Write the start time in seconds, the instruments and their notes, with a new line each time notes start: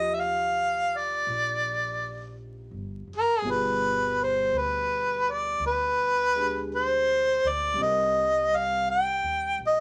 Already playing: upright bass D#2, grand piano F3 D#4 F4 G4, harmonica D#5
0.15 harmonica E5
0.21 harmonica F5
0.98 harmonica D5
1.27 upright bass A#1
2.71 upright bass G1
3.07 upright bass F#1
3.16 harmonica A#4
3.39 upright bass G1, grand piano G3, harmonica G#4
3.44 grand piano B2 F4 G#4
3.51 harmonica B4
4.24 harmonica C5
4.52 upright bass D2
4.58 harmonica B4
5.32 harmonica D5
5.59 upright bass D2
5.67 harmonica B4
6.35 grand piano G#3 D4 G4
6.75 harmonica C5
7.44 upright bass D2
7.50 harmonica D5
7.74 upright bass C2, grand piano G3 C4
7.81 grand piano D#4 A#4, harmonica D#5
8.57 harmonica F5
8.91 harmonica G5
9.23 upright bass D#2
9.59 upright bass A#1
9.67 harmonica D#5